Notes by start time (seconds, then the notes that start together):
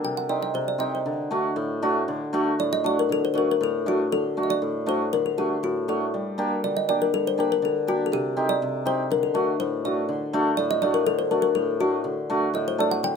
0.04 C3 G5
0.17 F#5
0.29 C4 D#4 G4 D5
0.43 D#5
0.54 C3 C5
0.68 D5
0.78 C4 D#4 G4 D#5
0.95 C5
1.06 D3
1.31 A3 D4 F#4
1.56 A2
1.82 A3 D4 F#4
2.08 D3
2.33 A3 D4 F#4
2.59 A2 D5
2.73 D#5
2.84 A3 D4 F#4 D5
2.99 A#4
3.09 D3 A4
3.25 C5
3.34 A3 D4 F#4 A#4 C5
3.51 A#4
3.61 A2 A4
3.86 A3 D4 F#4
4.12 D3 A4
4.37 A3 D4 F#4
4.43 D#5
4.50 D5
4.62 A2
4.86 A3 D4 F#4 C5
5.13 D3 A#4
5.26 A4
5.38 A3 D4 F#4 G4
5.63 A2 F#4
5.88 A3 D4 F#4 A4
6.14 G3
6.38 A#3 D4 G4
6.64 D3 D5
6.77 D#5
6.88 A#3 D4 G4 D5
7.02 A#4
7.14 G3 A4
7.27 C5
7.38 A#3 D4 G4 A#4
7.52 A#4
7.62 D3 A4
7.87 A#3 D4 F#4 G4
8.06 A4
8.12 C3 G4
8.37 C4 D#4 G4
8.49 D5
8.62 C3
8.85 C4 D#4 G4 C5
9.10 D3 A#4
9.23 A4
9.34 A3 D4 F#4 A#4
9.60 A2 C5
9.85 A3 D4 F#4 D5
10.09 D3
10.33 A3 D4 F#4
10.57 A2 D5
10.71 D#5
10.82 A3 D4 F#4 D5
10.94 A#4
11.07 D3 A4
11.19 C5
11.31 A3 D4 F#4 A#4
11.42 A#4
11.55 A2 A4
11.80 A3 D4 F#4
12.04 D3
12.30 A3 D4 F#4
12.54 A2 D#5
12.68 C5
12.78 A3 D4 A4 D5
12.91 F#5
13.03 D3 G5